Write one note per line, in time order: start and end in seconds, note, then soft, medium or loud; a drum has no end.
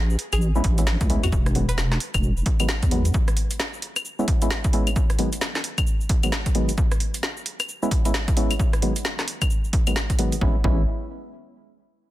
0.00 0.16 A1 loud
0.00 0.10 G#4 medium
0.10 cabasa soft
0.19 open hi-hat loud
0.33 0.62 A1 medium
0.33 0.56 G#4 medium
0.33 cross-stick soft
0.33 closed hi-hat medium
0.33 cabasa medium
0.33 claves medium
0.41 cabasa medium
0.55 0.62 G#3 medium
0.55 0.62 B3 medium
0.55 0.62 C#4 medium
0.55 0.62 E4 loud
0.55 cabasa soft
0.64 0.97 A1 loud
0.64 kick loud
0.64 open hi-hat loud
0.78 0.85 G#3 medium
0.78 0.85 B3 medium
0.78 0.85 C#4 medium
0.78 0.85 E4 medium
0.78 closed hi-hat medium
0.78 cabasa medium
0.87 snare loud
0.87 cabasa medium
1.01 1.18 C#2 loud
1.01 kick loud
1.01 closed hi-hat soft
1.01 cabasa soft
1.10 1.26 G#3 loud
1.10 1.26 B3 medium
1.10 1.26 C#4 medium
1.10 1.26 E4 loud
1.10 open hi-hat loud
1.23 1.31 E2 medium
1.23 1.47 F#4 medium
1.23 closed hi-hat medium
1.23 cabasa medium
1.23 claves medium
1.32 1.98 E1 loud
1.32 kick loud
1.32 cabasa medium
1.46 cross-stick medium
1.46 closed hi-hat soft
1.46 cabasa soft
1.55 1.66 D#3 medium
1.55 1.66 F#3 medium
1.55 1.66 G#3 medium
1.55 1.66 B3 loud
1.55 open hi-hat loud
1.69 1.92 B4 loud
1.69 closed hi-hat medium
1.69 cabasa medium
1.78 snare loud
1.78 cabasa medium
1.92 snare medium
1.92 cabasa soft
2.00 open hi-hat loud
2.14 2.43 E1 medium
2.14 kick medium
2.14 cross-stick soft
2.14 closed hi-hat medium
2.14 cabasa medium
2.14 claves medium
2.23 cabasa medium
2.37 cabasa soft
2.46 kick loud
2.46 open hi-hat loud
2.60 2.67 D#3 medium
2.60 2.67 F#3 medium
2.60 2.67 G#3 medium
2.60 2.67 B3 loud
2.60 closed hi-hat medium
2.60 cabasa medium
2.60 claves medium
2.69 snare loud
2.69 cabasa medium
2.83 3.12 E2 medium
2.83 kick medium
2.83 closed hi-hat soft
2.83 cabasa soft
2.91 3.08 D#3 loud
2.91 3.08 F#3 medium
2.91 3.08 G#3 loud
2.91 3.08 B3 loud
2.91 open hi-hat loud
3.05 open hi-hat medium
3.05 cabasa medium
3.14 kick loud
3.14 cabasa medium
3.28 cross-stick medium
3.28 closed hi-hat soft
3.28 cabasa soft
3.37 open hi-hat loud
3.51 closed hi-hat medium
3.51 cabasa medium
3.60 snare loud
3.60 cabasa medium
3.74 cabasa soft
3.82 open hi-hat loud
3.96 cross-stick soft
3.96 closed hi-hat medium
3.96 cabasa medium
3.96 claves medium
4.05 cabasa medium
4.19 4.26 G#3 medium
4.19 4.26 B3 medium
4.19 4.26 C#4 medium
4.19 4.26 E4 loud
4.19 cabasa soft
4.28 kick loud
4.28 open hi-hat loud
4.42 4.49 G#3 medium
4.42 4.49 B3 medium
4.42 4.49 C#4 medium
4.42 4.49 E4 medium
4.42 closed hi-hat medium
4.42 cabasa medium
4.51 snare loud
4.51 cabasa medium
4.64 kick loud
4.64 closed hi-hat soft
4.64 cabasa soft
4.73 4.89 G#3 loud
4.73 4.89 B3 medium
4.73 4.89 C#4 medium
4.73 4.89 E4 loud
4.73 open hi-hat loud
4.87 closed hi-hat medium
4.87 cabasa medium
4.87 claves medium
4.96 kick loud
4.96 cabasa medium
5.10 cross-stick medium
5.10 closed hi-hat soft
5.10 cabasa soft
5.19 5.30 D#3 loud
5.19 5.30 F#3 medium
5.19 5.30 G#3 medium
5.19 5.30 B3 loud
5.19 open hi-hat loud
5.33 closed hi-hat medium
5.33 cabasa medium
5.41 snare loud
5.41 cabasa medium
5.55 snare medium
5.55 cabasa soft
5.64 open hi-hat loud
5.78 kick medium
5.78 cross-stick soft
5.78 closed hi-hat medium
5.78 cabasa medium
5.78 claves medium
5.87 cabasa medium
6.01 cabasa soft
6.09 kick loud
6.09 open hi-hat loud
6.23 6.30 D#3 medium
6.23 6.30 F#3 medium
6.23 6.30 G#3 medium
6.23 6.30 B3 medium
6.23 closed hi-hat medium
6.23 cabasa medium
6.23 claves medium
6.32 snare loud
6.32 cabasa medium
6.46 kick medium
6.46 closed hi-hat medium
6.46 cabasa soft
6.55 6.71 D#3 loud
6.55 6.71 F#3 medium
6.55 6.71 G#3 medium
6.55 6.71 B3 loud
6.55 open hi-hat loud
6.69 open hi-hat medium
6.69 cabasa medium
6.78 kick loud
6.78 cabasa medium
6.92 cross-stick medium
6.92 closed hi-hat soft
6.92 cabasa soft
7.00 open hi-hat loud
7.14 closed hi-hat medium
7.14 cabasa medium
7.23 snare loud
7.23 cabasa medium
7.37 cabasa soft
7.46 open hi-hat loud
7.60 cross-stick soft
7.60 closed hi-hat medium
7.60 cabasa medium
7.60 claves medium
7.69 cabasa medium
7.83 7.90 G#3 medium
7.83 7.89 B3 medium
7.83 7.90 C#4 medium
7.83 7.90 E4 loud
7.83 cabasa soft
7.91 kick loud
7.91 open hi-hat loud
8.05 8.12 G#3 medium
8.05 8.12 B3 medium
8.05 8.12 C#4 medium
8.05 8.12 E4 medium
8.05 closed hi-hat medium
8.05 cabasa medium
8.14 snare loud
8.14 cabasa medium
8.28 kick loud
8.28 closed hi-hat medium
8.28 cabasa soft
8.37 8.53 G#3 loud
8.37 8.53 B3 medium
8.37 8.53 C#4 medium
8.37 8.53 E4 loud
8.37 open hi-hat loud
8.51 closed hi-hat medium
8.51 cabasa medium
8.51 claves medium
8.60 kick loud
8.60 cabasa soft
8.73 cross-stick medium
8.73 closed hi-hat soft
8.73 cabasa soft
8.82 8.93 D#3 loud
8.82 8.93 F#3 medium
8.82 8.93 G#3 medium
8.82 8.93 B3 loud
8.82 open hi-hat loud
8.96 closed hi-hat medium
8.96 cabasa medium
9.05 snare loud
9.05 cabasa medium
9.19 snare medium
9.19 cabasa soft
9.28 open hi-hat loud
9.42 kick medium
9.42 cross-stick soft
9.42 closed hi-hat medium
9.42 cabasa medium
9.42 claves medium
9.50 cabasa medium
9.64 cabasa soft
9.73 kick medium
9.73 open hi-hat loud
9.87 9.94 D#3 medium
9.87 9.94 F#3 medium
9.87 9.94 G#3 medium
9.87 9.94 B3 medium
9.87 closed hi-hat medium
9.87 cabasa medium
9.87 claves medium
9.96 snare loud
9.96 cabasa medium
10.10 kick medium
10.10 closed hi-hat medium
10.10 cabasa soft
10.19 10.35 D#3 loud
10.19 10.35 F#3 medium
10.19 10.35 G#3 medium
10.19 10.35 B3 loud
10.19 open hi-hat loud
10.32 open hi-hat medium
10.32 cabasa medium
10.41 10.56 A1 loud
10.41 10.56 G#3 medium
10.41 10.56 B3 medium
10.41 10.56 C#4 medium
10.41 10.56 E4 loud
10.41 kick loud
10.64 10.85 A1 loud
10.64 10.82 G#3 medium
10.64 10.82 B3 medium
10.64 10.82 C#4 medium
10.64 10.82 E4 loud
10.64 kick loud